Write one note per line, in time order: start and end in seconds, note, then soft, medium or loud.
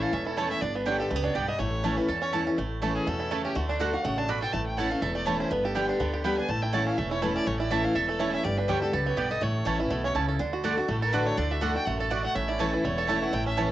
0.00 0.11 A2 medium
0.00 0.11 E3 medium
0.00 0.12 A3 medium
0.00 0.24 A3 medium
0.00 0.12 C#4 loud
0.00 0.11 E4 medium
0.00 0.12 E4 medium
0.00 0.35 A4 soft
0.00 0.14 F5 medium
0.13 0.52 E1 medium
0.13 0.60 E2 medium
0.13 0.48 C#4 medium
0.13 0.26 E5 medium
0.26 0.60 E4 medium
0.26 0.39 A4 medium
0.37 0.61 E3 medium
0.37 0.47 A3 medium
0.37 0.62 A3 medium
0.37 0.61 A3 loud
0.37 0.61 C#4 medium
0.37 0.47 E4 medium
0.37 0.62 E4 medium
0.37 0.50 C#5 loud
0.37 0.47 C#5 medium
0.37 0.48 A5 medium
0.50 0.61 C#4 medium
0.50 0.63 E5 loud
0.61 1.01 G1 medium
0.61 1.09 G2 medium
0.61 0.85 D4 medium
0.61 0.76 D5 medium
0.75 1.09 B3 medium
0.75 0.87 B4 loud
0.85 1.09 D3 medium
0.85 1.10 G3 medium
0.85 0.96 B3 medium
0.85 1.10 B3 medium
0.85 1.21 D4 medium
0.85 0.96 G4 medium
0.85 1.10 G4 medium
0.85 0.99 C#5 loud
0.85 0.96 D5 loud
0.85 0.96 G5 medium
1.00 1.33 G4 medium
1.00 1.12 A4 medium
1.10 1.32 C#2 medium
1.10 1.34 F#2 medium
1.10 1.16 A3 medium
1.10 1.23 B4 medium
1.16 1.35 B3 medium
1.24 1.57 D4 medium
1.24 1.36 C#5 medium
1.34 1.56 B1 medium
1.34 1.59 G2 medium
1.34 1.45 B3 medium
1.34 1.60 G4 medium
1.34 1.45 G4 medium
1.34 1.49 D5 medium
1.34 1.45 D5 medium
1.34 1.45 G5 medium
1.48 1.59 B3 medium
1.48 1.60 D#5 loud
1.59 1.98 A1 medium
1.59 2.07 A2 medium
1.59 1.83 A3 medium
1.59 1.98 C#5 medium
1.83 1.97 E3 medium
1.83 1.94 A3 medium
1.83 2.19 A3 medium
1.83 1.97 A3 medium
1.83 1.98 C#4 loud
1.83 1.94 E4 medium
1.83 1.96 E4 medium
1.83 1.94 C#5 medium
1.83 1.94 A5 medium
1.97 2.21 C#4 soft
1.97 2.09 C#4 medium
1.97 2.08 E4 medium
1.97 2.10 B4 medium
2.09 2.47 E2 medium
2.09 2.56 E2 medium
2.09 2.32 A4 medium
2.09 2.21 A4 medium
2.22 2.46 C#4 medium
2.22 2.28 C#5 loud
2.33 2.46 E3 medium
2.33 2.43 A3 medium
2.33 2.46 A3 medium
2.33 2.47 C#4 medium
2.33 2.43 E4 medium
2.33 2.46 E4 loud
2.33 2.58 A4 medium
2.33 2.43 C#5 medium
2.33 2.43 A5 loud
2.47 2.58 C#4 medium
2.47 2.58 C#4 soft
2.47 2.57 E4 medium
2.58 2.97 A1 medium
2.58 3.05 A2 medium
2.58 2.82 A3 medium
2.82 3.05 E3 medium
2.82 2.92 A3 medium
2.82 3.06 A3 medium
2.82 3.06 C#4 loud
2.82 2.92 E4 medium
2.82 3.06 E4 medium
2.82 2.92 C#5 medium
2.82 2.92 A5 medium
2.95 3.29 C#4 medium
2.95 3.09 G#4 medium
3.07 3.46 E2 medium
3.07 3.30 B2 medium
3.07 3.31 A3 medium
3.07 3.43 A4 medium
3.20 3.53 E4 medium
3.31 3.54 C#3 medium
3.31 3.41 A3 medium
3.31 3.55 A3 medium
3.31 3.41 E4 medium
3.31 3.41 C#5 medium
3.31 3.41 A5 medium
3.44 3.56 C#4 medium
3.44 3.57 G4 medium
3.55 3.94 D2 medium
3.55 3.78 D3 medium
3.55 3.79 A3 medium
3.55 3.68 F#4 medium
3.68 3.75 D4 medium
3.68 4.02 D4 medium
3.79 3.93 D3 medium
3.79 3.90 A3 medium
3.79 3.93 A3 loud
3.79 4.03 A3 medium
3.79 3.93 D4 medium
3.79 3.90 F#4 medium
3.79 3.92 F#4 loud
3.79 3.90 D5 loud
3.79 3.90 F#5 loud
3.93 4.05 D4 medium
3.93 4.04 F#4 medium
3.93 4.27 F#4 medium
3.93 4.06 F5 medium
4.05 4.43 A1 medium
4.05 4.28 C#3 medium
4.05 4.40 A3 medium
4.05 4.20 F#5 medium
4.18 4.51 D4 medium
4.18 4.31 A5 loud
4.28 4.52 B2 medium
4.28 4.39 A3 medium
4.28 4.39 F#4 medium
4.28 4.53 F#4 medium
4.28 4.39 D5 medium
4.28 4.39 F#5 medium
4.28 4.42 B5 loud
4.42 4.53 A4 medium
4.42 4.54 G5 medium
4.53 4.92 A1 medium
4.53 5.00 A2 loud
4.53 4.89 A3 medium
4.53 4.66 A5 medium
4.66 4.78 G5 medium
4.77 4.91 E3 medium
4.77 4.87 A3 loud
4.77 4.91 A3 medium
4.77 4.91 C#4 loud
4.77 4.87 E4 medium
4.77 4.90 E4 medium
4.77 5.01 A4 medium
4.77 4.88 C#5 medium
4.77 4.92 F#5 medium
4.77 4.88 A5 loud
4.90 5.14 A3 medium
4.90 5.03 C#4 medium
4.90 5.02 E4 medium
4.90 5.03 F5 medium
5.01 5.41 E1 medium
5.01 5.49 E2 medium
5.01 5.37 A4 medium
5.01 5.15 E5 medium
5.15 5.49 A3 medium
5.15 5.28 D5 medium
5.26 5.50 E3 medium
5.26 5.36 A3 medium
5.26 5.50 A3 medium
5.26 5.50 C#4 medium
5.26 5.36 E4 medium
5.26 5.51 E4 medium
5.26 5.39 C#5 medium
5.26 5.36 C#5 medium
5.26 5.37 A5 medium
5.39 5.51 C#4 medium
5.39 5.52 C5 medium
5.51 5.90 G1 medium
5.51 5.98 G2 medium
5.51 5.74 B3 medium
5.51 5.65 B4 medium
5.64 5.98 G4 medium
5.64 5.77 A4 medium
5.75 5.99 D3 medium
5.75 5.99 G3 medium
5.75 5.85 B3 medium
5.75 5.99 B3 medium
5.75 5.99 B3 loud
5.75 5.85 G4 medium
5.75 5.88 G4 medium
5.75 6.00 G4 loud
5.75 5.86 D5 medium
5.75 5.86 G5 loud
5.88 6.22 D4 medium
5.88 6.22 G4 medium
6.00 6.39 D2 medium
6.00 6.23 D3 medium
6.00 6.23 B3 medium
6.14 6.47 G4 medium
6.24 6.37 D3 medium
6.24 6.37 G3 medium
6.24 6.34 B3 medium
6.24 6.49 B3 medium
6.24 6.38 B3 medium
6.24 6.34 G4 medium
6.24 6.36 G4 loud
6.24 6.35 D5 medium
6.24 6.35 G5 medium
6.24 6.37 B5 medium
6.38 6.49 B3 soft
6.38 6.49 D4 medium
6.38 6.48 G4 soft
6.38 6.51 G#5 loud
6.48 6.87 A1 medium
6.48 6.95 A2 medium
6.48 6.72 A3 medium
6.48 6.63 A5 loud
6.62 6.96 E4 medium
6.62 6.74 G5 medium
6.73 6.96 E3 medium
6.73 6.83 A3 medium
6.73 6.97 A3 medium
6.73 6.97 C#4 medium
6.73 6.83 E4 medium
6.73 6.97 E4 loud
6.73 6.83 C#5 loud
6.73 6.85 F#5 medium
6.73 6.84 A5 loud
6.86 7.20 C#4 medium
6.86 6.99 F5 medium
6.97 7.37 E1 medium
6.97 7.45 E2 medium
6.97 7.21 A3 medium
6.97 7.11 E5 medium
7.11 7.45 E4 medium
7.11 7.24 C#5 medium
7.22 7.46 E3 medium
7.22 7.32 A3 medium
7.22 7.45 A3 medium
7.22 7.46 A3 medium
7.22 7.46 C#4 medium
7.22 7.32 E4 medium
7.22 7.47 E4 loud
7.22 7.35 B4 medium
7.22 7.32 C#5 medium
7.22 7.32 A5 medium
7.35 7.69 C#4 medium
7.35 7.48 D5 loud
7.47 7.85 A1 medium
7.47 7.94 A2 medium
7.47 7.82 A3 medium
7.47 7.59 C#5 medium
7.59 7.93 E4 medium
7.59 7.72 D5 medium
7.71 7.94 E3 medium
7.71 7.81 A3 medium
7.71 7.94 A3 medium
7.71 7.95 C#4 medium
7.71 7.81 E4 loud
7.71 7.95 E4 loud
7.71 7.94 A4 medium
7.71 7.81 C#5 loud
7.71 7.86 E5 medium
7.71 7.81 A5 loud
7.84 8.08 A3 medium
7.84 7.97 F5 medium
7.95 8.34 E1 medium
7.95 8.42 E2 medium
7.95 8.31 A4 medium
7.95 8.08 E5 medium
8.08 8.42 A3 medium
8.08 8.21 A4 medium
8.19 8.43 E3 medium
8.19 8.30 A3 medium
8.19 8.43 A3 medium
8.19 8.44 C#4 medium
8.19 8.30 E4 medium
8.19 8.44 E4 medium
8.19 8.32 C#5 medium
8.19 8.30 C#5 medium
8.19 8.30 A5 loud
8.33 8.45 C#4 medium
8.33 8.45 E5 loud
8.44 8.64 G1 medium
8.44 8.91 G2 medium
8.44 8.80 G4 medium
8.44 8.59 D5 loud
8.58 8.91 D4 medium
8.58 8.70 B4 loud
8.68 8.90 D2 medium
8.68 8.81 D3 medium
8.68 8.82 G3 loud
8.68 9.04 G3 medium
8.68 8.78 B3 medium
8.68 8.82 B3 medium
8.68 8.79 G4 medium
8.68 8.81 G4 medium
8.68 8.81 C#5 loud
8.68 8.79 D5 loud
8.68 8.79 G5 loud
8.82 8.94 B3 soft
8.82 8.93 G4 medium
8.82 9.16 G4 medium
8.82 8.95 A4 medium
8.93 9.14 C#2 medium
8.93 9.17 F#2 medium
8.93 9.29 A4 medium
8.93 9.07 B4 medium
9.07 9.40 B3 medium
9.07 9.20 C#5 medium
9.17 9.38 B1 medium
9.17 9.41 G2 medium
9.17 9.27 B3 medium
9.17 9.42 G4 medium
9.17 9.27 G4 medium
9.17 9.28 D5 medium
9.17 9.32 D5 loud
9.17 9.28 G5 medium
9.31 9.42 A4 medium
9.31 9.44 D#5 loud
9.41 9.61 A1 medium
9.41 9.88 A2 medium
9.41 9.65 A3 medium
9.41 9.81 C#5 medium
9.65 9.87 A1 medium
9.65 9.79 E3 medium
9.65 9.79 A3 medium
9.65 9.76 A3 medium
9.65 9.89 A3 medium
9.65 9.79 C#4 medium
9.65 9.76 E4 medium
9.65 9.78 E4 loud
9.65 9.76 C#5 loud
9.65 9.77 A5 loud
9.79 9.91 C#4 soft
9.79 9.90 E4 medium
9.79 10.13 E4 medium
9.79 9.92 B4 medium
9.90 10.12 B1 medium
9.90 10.14 B2 medium
9.90 10.26 A3 medium
9.90 10.04 A4 medium
10.04 10.38 C#4 medium
10.04 10.11 C#5 loud
10.15 10.36 C#2 medium
10.15 10.39 C#3 medium
10.15 10.25 A3 medium
10.15 10.25 E4 medium
10.15 10.40 E4 medium
10.15 10.25 C#5 medium
10.15 10.25 A5 loud
10.29 10.40 A4 medium
10.39 10.79 D2 medium
10.39 10.62 D3 medium
10.39 10.75 D4 medium
10.53 10.76 F#4 medium
10.63 10.77 D3 medium
10.63 10.74 A3 medium
10.63 10.77 A3 medium
10.63 10.77 D4 medium
10.63 10.74 F#4 medium
10.63 10.76 F#4 medium
10.63 11.02 A4 medium
10.63 10.74 D5 medium
10.63 10.74 F#5 loud
10.77 10.89 D4 soft
10.77 10.88 F#4 medium
10.77 11.11 F#4 medium
10.88 11.27 A1 medium
10.88 11.35 A2 medium
10.88 11.26 A3 medium
10.88 11.01 A4 medium
11.02 11.62 A4 medium
11.02 11.14 A#4 medium
11.12 11.36 D3 medium
11.12 11.23 A3 medium
11.12 11.36 A3 medium
11.12 11.37 D4 loud
11.12 11.23 F#4 medium
11.12 11.48 F#4 medium
11.12 11.37 F#4 medium
11.12 11.28 B4 medium
11.12 11.23 D5 loud
11.12 11.23 F#5 loud
11.26 11.87 A3 medium
11.26 11.39 C#5 loud
11.37 11.76 D2 medium
11.37 11.60 D3 loud
11.37 11.73 D4 medium
11.37 11.53 D5 medium
11.51 11.75 F#4 medium
11.51 11.63 E5 medium
11.61 11.74 D3 loud
11.61 11.71 A3 loud
11.61 11.75 A3 medium
11.61 11.75 D4 loud
11.61 11.72 F#4 medium
11.61 11.74 F#4 medium
11.61 12.00 A4 medium
11.61 11.72 D5 loud
11.61 11.74 F#5 medium
11.61 11.72 F#5 medium
11.75 11.87 D4 soft
11.75 11.86 F#4 medium
11.75 12.09 F#4 medium
11.75 11.87 G5 loud
11.86 12.25 A1 medium
11.86 12.10 F#2 medium
11.86 12.24 A3 medium
11.86 11.99 F#5 medium
11.99 12.12 A4 medium
11.99 12.60 A4 medium
12.10 12.34 B2 medium
12.10 12.20 A3 medium
12.10 12.21 F#4 medium
12.10 12.36 F#4 medium
12.10 12.24 D5 medium
12.10 12.21 D5 medium
12.10 12.21 F#5 medium
12.24 12.84 A3 medium
12.24 12.37 F#5 loud
12.35 12.74 A1 medium
12.35 12.82 A2 medium
12.35 13.46 C#4 medium
12.35 12.50 E5 medium
12.48 12.73 E4 medium
12.48 12.61 D5 loud
12.59 12.83 E3 medium
12.59 12.69 A3 loud
12.59 12.83 A3 loud
12.59 12.84 C#4 loud
12.59 12.69 E4 medium
12.59 12.84 E4 medium
12.59 12.98 A4 medium
12.59 12.70 C#5 medium
12.59 12.74 C#5 medium
12.59 12.70 A5 loud
12.73 13.08 E4 medium
12.73 12.86 B4 medium
12.84 13.23 E1 loud
12.84 13.31 E2 medium
12.84 13.22 A3 medium
12.84 13.24 C#5 medium
12.98 13.71 A4 medium
13.07 13.32 E3 medium
13.07 13.18 A3 medium
13.07 13.32 A3 loud
13.07 13.33 C#4 medium
13.07 13.18 E4 medium
13.07 13.44 E4 medium
13.07 13.33 E4 loud
13.07 13.18 C#5 medium
13.07 13.18 A5 loud
13.22 13.33 A3 medium
13.22 13.35 F#5 medium
13.33 13.72 A1 medium
13.33 13.72 A2 loud
13.33 13.72 A3 medium
13.33 13.47 G5 medium
13.46 13.72 C#4 medium
13.46 13.60 E5 medium
13.57 13.70 E3 medium
13.57 13.67 A3 medium
13.57 13.71 A3 medium
13.57 13.71 C#4 medium
13.57 13.67 E4 loud
13.57 13.72 E4 medium
13.57 13.70 E4 loud
13.57 13.67 C#5 loud
13.57 13.68 C#5 medium
13.57 13.67 A5 loud
13.67 13.72 A4 medium